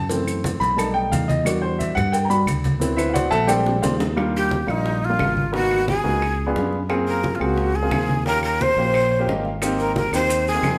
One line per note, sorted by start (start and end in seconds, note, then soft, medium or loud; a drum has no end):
0.00 0.55 F#2 medium
0.00 0.25 A5 loud
0.10 0.75 E3 medium
0.10 0.75 A3 medium
0.10 0.75 C4 medium
0.10 cowbell loud
0.10 high conga soft
0.10 maracas medium
0.27 high conga soft
0.27 claves medium
0.27 maracas medium
0.44 cowbell medium
0.44 high conga loud
0.44 maracas medium
0.60 1.08 B1 loud
0.60 0.77 B5 loud
0.60 cowbell medium
0.60 high conga soft
0.60 maracas soft
0.76 1.26 G3 medium
0.76 1.26 A3 medium
0.76 1.26 D#4 medium
0.76 0.95 A5 medium
0.76 cowbell loud
0.76 high conga soft
0.76 claves medium
0.76 maracas medium
0.94 1.11 G5 loud
0.94 high conga soft
1.11 1.91 E2 medium
1.11 1.28 F5 medium
1.11 cowbell medium
1.11 high conga medium
1.11 maracas medium
1.28 1.45 D#5 medium
1.28 cowbell medium
1.28 high conga medium
1.28 maracas soft
1.44 1.94 G3 medium
1.44 1.94 D4 medium
1.44 1.94 F#4 medium
1.44 1.62 D5 medium
1.44 cowbell loud
1.44 high conga soft
1.44 claves medium
1.44 maracas medium
1.62 1.79 C5 medium
1.62 high conga soft
1.79 1.96 E5 medium
1.79 cowbell medium
1.79 high conga medium
1.79 maracas medium
1.95 2.44 G2 loud
1.95 2.12 F#5 loud
1.95 cowbell medium
1.95 high conga soft
1.95 low conga medium
1.95 claves medium
1.95 maracas soft
2.12 2.30 G5 medium
2.12 cowbell loud
2.12 high conga soft
2.12 maracas medium
2.25 2.28 A#5 medium
2.29 2.45 G3 medium
2.29 2.45 D4 soft
2.29 2.46 F#4 medium
2.29 2.40 B5 loud
2.29 high conga soft
2.29 maracas medium
2.46 3.26 D2 medium
2.46 cowbell medium
2.46 high conga medium
2.46 claves medium
2.46 maracas medium
2.64 cowbell medium
2.64 high conga medium
2.64 maracas soft
2.80 3.45 F#3 medium
2.80 3.45 B3 medium
2.80 3.45 C4 medium
2.80 2.96 E4 medium
2.80 cowbell loud
2.80 high conga soft
2.80 maracas medium
2.97 3.14 E4 medium
2.97 3.15 B4 medium
2.97 3.13 C5 medium
2.97 3.14 E5 medium
2.97 high conga soft
2.97 claves medium
2.97 maracas medium
3.10 3.12 F5 medium
3.10 3.29 F#5 medium
3.14 3.31 F#4 medium
3.14 3.31 C5 medium
3.14 3.31 D5 medium
3.14 cowbell medium
3.14 high conga loud
3.14 maracas medium
3.31 3.79 A#1 loud
3.31 3.48 A4 medium
3.31 3.48 E5 loud
3.31 3.48 F#5 loud
3.31 3.48 A5 loud
3.31 cowbell medium
3.31 high conga soft
3.31 maracas soft
3.47 3.96 G3 medium
3.47 3.96 G#3 medium
3.47 3.97 C4 medium
3.47 3.97 D4 medium
3.47 3.80 G4 medium
3.47 3.80 C5 medium
3.47 3.80 D5 medium
3.47 3.80 G5 medium
3.47 cowbell loud
3.47 high conga soft
3.47 claves medium
3.47 maracas medium
3.66 high bongo medium
3.66 high conga soft
3.82 4.62 D#2 loud
3.82 3.93 F4 medium
3.82 3.93 C5 medium
3.82 3.93 D5 medium
3.82 3.93 F5 medium
3.82 cowbell medium
3.82 low bongo loud
3.82 high conga medium
3.82 maracas medium
4.00 cowbell medium
4.00 low bongo loud
4.00 maracas soft
4.16 4.53 G3 medium
4.16 4.53 A#3 medium
4.16 4.53 D4 medium
4.16 4.53 F4 medium
4.16 high bongo medium
4.16 high conga soft
4.16 claves medium
4.35 4.72 G4 medium
4.35 high conga soft
4.51 high bongo medium
4.51 high conga medium
4.67 5.16 A#1 medium
4.67 4.97 G3 medium
4.67 4.98 A#3 medium
4.67 4.98 D4 medium
4.67 5.06 D#4 medium
4.67 4.98 F4 medium
4.67 high conga soft
4.67 claves medium
4.86 high bongo medium
4.86 high conga soft
5.03 5.55 F4 loud
5.03 high conga soft
5.09 5.40 G3 medium
5.09 5.40 A#3 medium
5.09 5.40 D4 medium
5.09 5.40 F4 medium
5.19 5.99 G#1 medium
5.19 high bongo medium
5.19 low bongo medium
5.19 high conga medium
5.19 claves medium
5.37 high conga medium
5.52 5.89 A#3 medium
5.52 5.89 B3 medium
5.52 5.89 D#4 medium
5.52 5.89 F#4 medium
5.52 5.86 F#4 medium
5.52 high bongo medium
5.52 high conga soft
5.71 high bongo soft
5.71 high conga soft
5.71 claves medium
5.88 6.52 G#4 loud
5.88 high bongo medium
5.88 high conga medium
6.04 6.52 C#2 medium
6.04 6.21 A#3 medium
6.04 6.21 B3 medium
6.04 6.21 D#4 medium
6.04 6.21 F#4 medium
6.04 high bongo soft
6.04 high conga soft
6.22 high bongo medium
6.22 high conga soft
6.22 claves medium
6.40 high conga soft
6.47 6.77 B3 medium
6.47 6.77 D4 medium
6.47 6.77 F4 medium
6.47 6.77 G#4 medium
6.56 7.35 F#2 medium
6.56 high bongo medium
6.56 low bongo medium
6.56 high conga soft
6.73 high bongo soft
6.73 high conga soft
6.89 7.25 A#3 medium
6.89 7.25 C4 medium
6.89 7.25 F4 medium
6.89 7.25 G#4 medium
6.89 high bongo medium
6.89 high conga soft
6.89 claves medium
7.07 7.37 A#4 medium
7.07 high conga soft
7.23 high bongo medium
7.23 high conga medium
7.35 7.43 F4 medium
7.40 7.88 C#2 medium
7.40 7.70 A#3 medium
7.40 7.70 C4 medium
7.40 7.70 F4 medium
7.40 7.77 F#4 medium
7.40 7.70 G#4 medium
7.40 high conga soft
7.40 claves medium
7.58 high bongo medium
7.58 high conga soft
7.75 8.26 G#4 medium
7.75 high conga soft
7.82 8.13 A#3 medium
7.82 8.12 C4 medium
7.82 8.13 F4 medium
7.82 8.13 G#4 medium
7.91 8.71 D#2 medium
7.91 high bongo medium
7.91 low bongo medium
7.91 high conga medium
7.91 claves medium
8.09 high conga medium
8.25 8.61 A#3 medium
8.25 8.62 C#4 medium
8.25 8.62 F4 medium
8.25 8.62 G4 medium
8.25 8.42 A#4 loud
8.25 high bongo medium
8.25 high conga soft
8.43 8.63 A#4 medium
8.43 high bongo soft
8.43 high conga soft
8.43 claves medium
8.61 9.29 C5 loud
8.61 high bongo medium
8.61 high conga medium
8.77 9.24 A#1 medium
8.77 9.07 A#3 medium
8.77 9.07 C#4 medium
8.77 9.07 F4 medium
8.77 9.07 G4 medium
8.77 high bongo soft
8.94 high bongo medium
8.94 high conga soft
8.94 claves medium
9.11 9.27 C#5 medium
9.11 high conga soft
9.19 9.49 A#3 medium
9.19 9.49 C#4 medium
9.19 9.49 F4 medium
9.19 9.49 G4 medium
9.27 10.07 G#1 medium
9.27 9.43 D#5 medium
9.27 high bongo medium
9.27 low bongo medium
9.27 high conga soft
9.45 9.61 F5 medium
9.45 high bongo soft
9.45 high conga soft
9.62 9.98 A#3 medium
9.62 9.98 C4 medium
9.62 9.98 D#4 medium
9.62 9.98 G4 medium
9.62 high bongo medium
9.62 high conga soft
9.62 claves medium
9.62 maracas loud
9.79 9.94 A#4 medium
9.79 high conga soft
9.79 maracas soft
9.96 10.12 A#4 loud
9.96 high bongo medium
9.96 high conga medium
9.96 maracas soft
10.12 10.60 D#2 medium
10.12 10.42 A#3 medium
10.12 10.42 C4 medium
10.12 10.42 D#4 medium
10.12 10.43 G4 medium
10.12 10.45 C5 loud
10.12 high conga soft
10.12 claves medium
10.12 maracas medium
10.30 high bongo medium
10.30 high conga soft
10.30 maracas medium
10.47 10.78 G#4 loud
10.47 high conga soft
10.47 maracas soft
10.54 10.78 A#3 medium
10.54 10.78 C4 medium
10.54 10.78 D#4 medium
10.54 10.78 G4 medium
10.62 10.78 F2 medium
10.62 high bongo medium
10.62 low bongo medium
10.62 high conga medium
10.62 claves medium
10.62 maracas soft